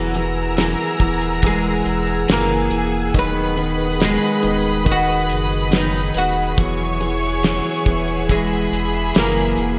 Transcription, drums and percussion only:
0.14 closed hi-hat medium
0.57 snare medium
0.57 closed hi-hat medium
1.00 kick medium
1.00 closed hi-hat medium
1.21 closed hi-hat medium
1.42 kick medium
1.42 closed hi-hat medium
1.86 closed hi-hat medium
2.07 closed hi-hat medium
2.28 snare loud
2.28 closed hi-hat loud
2.71 closed hi-hat medium
3.14 kick loud
3.14 closed hi-hat medium
3.57 closed hi-hat medium
4.00 snare medium
4.00 closed hi-hat medium
4.43 closed hi-hat medium
4.86 kick medium
4.86 closed hi-hat medium
5.29 closed hi-hat medium
5.72 snare loud
5.72 closed hi-hat medium
6.14 closed hi-hat medium
6.58 kick loud
6.58 closed hi-hat medium
7.01 closed hi-hat medium
7.43 snare medium
7.43 closed hi-hat medium
7.86 kick medium
7.86 closed hi-hat medium
8.08 closed hi-hat medium
8.29 kick medium
8.29 closed hi-hat medium
8.73 closed hi-hat medium
8.94 closed hi-hat soft
9.15 snare loud
9.15 closed hi-hat loud
9.58 closed hi-hat medium

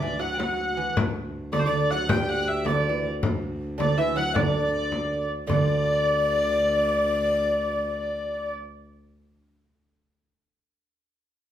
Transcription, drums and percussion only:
0.40 frame drum medium
0.97 frame drum loud
1.16 frame drum soft
1.53 frame drum medium
1.91 frame drum soft
2.09 frame drum loud
2.28 frame drum soft
2.66 frame drum medium
3.04 frame drum soft
3.23 frame drum loud
3.42 frame drum soft
3.80 frame drum medium
4.17 frame drum soft
4.36 frame drum medium
4.73 frame drum soft
4.92 frame drum medium
5.12 frame drum soft
5.50 frame drum medium

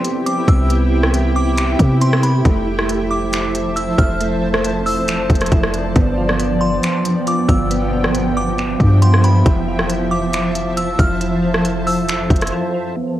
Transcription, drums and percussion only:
0.04 closed hi-hat medium
0.26 closed hi-hat medium
0.48 kick loud
0.48 closed hi-hat medium
0.70 closed hi-hat medium
1.03 cross-stick medium
1.14 closed hi-hat medium
1.58 finger snap loud
1.58 closed hi-hat medium
1.79 kick loud
1.79 closed hi-hat medium
2.02 closed hi-hat medium
2.13 cross-stick loud
2.23 closed hi-hat medium
2.45 kick loud
2.45 closed hi-hat medium
2.79 cross-stick medium
2.89 closed hi-hat medium
3.33 finger snap loud
3.33 closed hi-hat medium
3.55 closed hi-hat medium
3.77 closed hi-hat medium
3.98 kick loud
3.98 closed hi-hat medium
4.20 closed hi-hat medium
4.54 cross-stick loud
4.64 closed hi-hat loud
4.87 open hi-hat medium
5.08 finger snap loud
5.08 closed hi-hat medium
5.30 kick loud
5.30 closed hi-hat medium
5.35 closed hi-hat medium
5.41 cross-stick medium
5.41 closed hi-hat medium
5.46 closed hi-hat medium
5.52 kick medium
5.52 closed hi-hat medium
5.63 cross-stick medium
5.74 closed hi-hat medium
5.96 kick loud
5.96 closed hi-hat medium
6.29 cross-stick medium
6.39 closed hi-hat medium
6.83 finger snap loud
6.83 closed hi-hat medium
7.05 closed hi-hat medium
7.27 closed hi-hat medium
7.49 kick medium
7.49 closed hi-hat medium
7.71 closed hi-hat medium
8.04 cross-stick medium
8.15 closed hi-hat medium
8.58 finger snap loud
8.58 closed hi-hat medium
8.80 kick loud
8.80 closed hi-hat medium
9.02 closed hi-hat medium
9.14 cross-stick medium
9.24 closed hi-hat medium
9.46 kick loud
9.46 closed hi-hat medium
9.79 cross-stick medium
9.90 closed hi-hat loud
10.33 finger snap loud
10.33 closed hi-hat medium
10.55 closed hi-hat medium
10.77 closed hi-hat medium
10.99 kick loud
10.99 closed hi-hat medium
11.21 closed hi-hat medium
11.54 cross-stick medium
11.65 closed hi-hat medium
11.87 open hi-hat medium
12.09 finger snap loud
12.09 closed hi-hat medium
12.30 kick loud
12.30 closed hi-hat medium
12.36 closed hi-hat medium
12.42 cross-stick medium
12.42 closed hi-hat medium
12.47 closed hi-hat medium

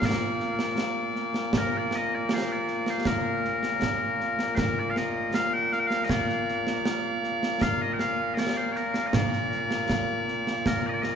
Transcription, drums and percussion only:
0.02 concert bass drum medium
0.02 snare loud
0.21 snare soft
0.40 snare soft
0.59 snare medium
0.78 snare medium
1.16 snare soft
1.34 snare medium
1.53 concert bass drum medium
1.53 snare loud
1.91 snare medium
2.29 snare loud
2.67 snare soft
2.86 snare medium
3.05 concert bass drum medium
3.05 snare loud
3.45 snare soft
3.63 snare medium
3.82 concert bass drum soft
3.82 snare medium
4.20 snare soft
4.39 snare medium
4.58 concert bass drum medium
4.58 snare loud
4.96 snare medium
5.34 snare loud
5.72 snare soft
5.91 snare medium
6.09 concert bass drum medium
6.09 snare loud
6.29 snare soft
6.48 snare soft
6.67 snare medium
6.86 snare medium
7.23 snare soft
7.43 snare medium
7.61 concert bass drum medium
7.61 snare loud
7.99 snare medium
8.37 snare medium
8.75 snare soft
8.94 snare medium
9.13 concert bass drum medium
9.13 snare loud
9.33 snare soft
9.52 snare soft
9.71 snare medium
9.89 concert bass drum medium
9.89 snare medium
10.28 snare soft
10.47 snare medium
10.66 concert bass drum medium
10.66 snare medium
11.03 snare medium

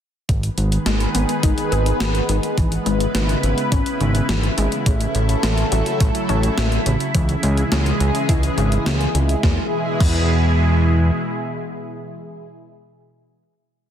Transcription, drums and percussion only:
0.29 kick loud
0.29 closed hi-hat medium
0.43 closed hi-hat soft
0.58 closed hi-hat medium
0.72 closed hi-hat soft
0.86 snare loud
0.86 closed hi-hat medium
1.00 closed hi-hat soft
1.15 closed hi-hat medium
1.29 closed hi-hat soft
1.43 kick loud
1.43 closed hi-hat medium
1.58 closed hi-hat soft
1.72 closed hi-hat soft
1.86 closed hi-hat soft
2.00 snare loud
2.00 closed hi-hat loud
2.15 closed hi-hat soft
2.29 closed hi-hat medium
2.43 closed hi-hat soft
2.58 kick loud
2.58 closed hi-hat medium
2.72 closed hi-hat soft
2.86 closed hi-hat medium
3.00 closed hi-hat soft
3.15 snare loud
3.15 closed hi-hat medium
3.29 closed hi-hat soft
3.43 closed hi-hat medium
3.58 closed hi-hat soft
3.72 kick loud
3.72 closed hi-hat medium
3.86 closed hi-hat soft
4.01 closed hi-hat soft
4.15 closed hi-hat soft
4.29 snare loud
4.29 closed hi-hat loud
4.43 closed hi-hat soft
4.58 closed hi-hat medium
4.72 closed hi-hat soft
4.86 kick loud
4.86 closed hi-hat medium
5.01 closed hi-hat soft
5.15 closed hi-hat medium
5.29 closed hi-hat soft
5.43 snare loud
5.43 closed hi-hat medium
5.58 closed hi-hat soft
5.72 closed hi-hat medium
5.86 closed hi-hat soft
6.00 kick loud
6.00 closed hi-hat medium
6.15 closed hi-hat soft
6.29 closed hi-hat soft
6.43 closed hi-hat soft
6.58 snare loud
6.58 closed hi-hat loud
6.72 closed hi-hat soft
6.86 closed hi-hat medium
7.00 closed hi-hat soft
7.15 kick loud
7.15 closed hi-hat medium
7.29 closed hi-hat soft
7.43 closed hi-hat medium
7.57 closed hi-hat soft
7.72 snare loud
7.72 closed hi-hat medium
7.86 closed hi-hat soft
8.00 closed hi-hat medium
8.15 closed hi-hat soft
8.29 kick loud
8.29 closed hi-hat medium
8.43 closed hi-hat soft
8.58 closed hi-hat soft
8.72 closed hi-hat soft
8.86 snare loud
8.86 closed hi-hat medium
9.01 closed hi-hat soft
9.15 closed hi-hat medium
9.29 closed hi-hat soft
9.43 kick loud
9.43 snare medium
10.00 kick loud
10.00 crash medium

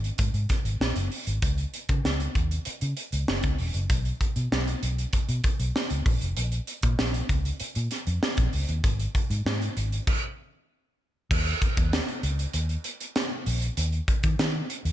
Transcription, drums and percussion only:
0.04 closed hi-hat soft
0.18 kick medium
0.18 closed hi-hat medium
0.34 closed hi-hat medium
0.49 kick medium
0.49 snare soft
0.49 closed hi-hat medium
0.65 closed hi-hat medium
0.81 snare loud
0.96 closed hi-hat medium
1.12 open hi-hat medium
1.27 closed hi-hat medium
1.42 kick loud
1.42 closed hi-hat medium
1.58 closed hi-hat soft
1.74 closed hi-hat medium
1.89 kick loud
1.89 closed hi-hat medium
2.05 snare loud
2.20 closed hi-hat soft
2.35 kick medium
2.35 closed hi-hat medium
2.51 closed hi-hat soft
2.65 closed hi-hat medium
2.81 closed hi-hat medium
2.97 closed hi-hat medium
3.12 closed hi-hat medium
3.28 snare loud
3.43 kick medium
3.43 closed hi-hat medium
3.58 open hi-hat medium
3.74 closed hi-hat medium
3.90 kick loud
3.90 closed hi-hat loud
4.05 closed hi-hat soft
4.21 kick medium
4.21 closed hi-hat medium
4.36 closed hi-hat medium
4.52 snare loud
4.67 closed hi-hat soft
4.83 closed hi-hat medium
4.98 closed hi-hat soft
5.13 kick medium
5.13 closed hi-hat medium
5.29 closed hi-hat medium
5.44 kick medium
5.44 closed hi-hat medium
5.60 closed hi-hat medium
5.76 snare loud
5.90 closed hi-hat medium
6.06 kick loud
6.06 open hi-hat medium
6.21 closed hi-hat medium
6.37 closed hi-hat loud
6.52 closed hi-hat soft
6.67 closed hi-hat medium
6.83 kick loud
6.83 closed hi-hat medium
6.99 snare loud
7.14 closed hi-hat medium
7.29 kick medium
7.29 closed hi-hat medium
7.45 closed hi-hat soft
7.60 closed hi-hat medium
7.75 closed hi-hat medium
7.91 snare soft
7.91 closed hi-hat medium
8.07 closed hi-hat medium
8.23 snare loud
8.37 kick medium
8.37 closed hi-hat medium
8.53 open hi-hat medium
8.69 closed hi-hat medium
8.84 kick loud
8.84 closed hi-hat medium
9.00 closed hi-hat medium
9.15 kick medium
9.15 closed hi-hat medium
9.31 closed hi-hat medium
9.46 snare loud
9.62 closed hi-hat medium
9.77 closed hi-hat medium
9.92 closed hi-hat soft
10.07 kick loud
10.07 crash medium
11.31 kick loud
11.31 crash medium
11.47 closed hi-hat soft
11.62 kick medium
11.62 closed hi-hat medium
11.77 kick loud
11.77 closed hi-hat medium
11.93 snare loud
11.93 closed hi-hat medium
12.08 closed hi-hat soft
12.23 closed hi-hat medium
12.39 closed hi-hat soft
12.54 closed hi-hat medium
12.69 closed hi-hat soft
12.84 closed hi-hat medium
13.00 closed hi-hat medium
13.16 snare loud
13.16 closed hi-hat medium
13.46 open hi-hat medium
13.62 closed hi-hat medium
13.77 closed hi-hat loud
13.92 closed hi-hat soft
14.08 kick medium
14.08 closed hi-hat medium
14.23 kick loud
14.23 closed hi-hat medium
14.39 snare loud
14.39 closed hi-hat medium
14.70 closed hi-hat medium
14.85 closed hi-hat soft

